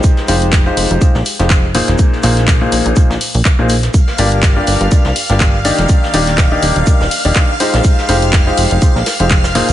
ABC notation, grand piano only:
X:1
M:4/4
L:1/16
Q:"Swing 16ths" 1/4=123
K:Fdor
V:1 name="Grand piano"
[A,EFGc]2 [A,EFGc]3 [A,EFGc]3 [A,EFGc] z2 [A,EFGc]2 z [B,,B,EFAc]2- | [B,,B,EFAc]2 [B,,B,EFAc]3 [B,,B,EFAc]3 [B,,B,EFAc] z4 [B,,B,EFAc] z2 | z2 [G,,B,DFGd]3 [G,,B,DFGd]3 [G,,B,DFGd] z2 [G,,B,DFGd]2 z [E,B,DEGd]2- | [E,B,DEGd]2 [E,B,DEGd]3 [E,B,DEGd]3 [E,B,DEGd] z2 [E,B,DEGd]2 z [A,EFGc]2- |
[A,EFGc]2 [A,EFGc]3 [A,EFGc]3 [A,EFGc] z2 [A,EFGc]2 z [B,,B,EFAc]2 |]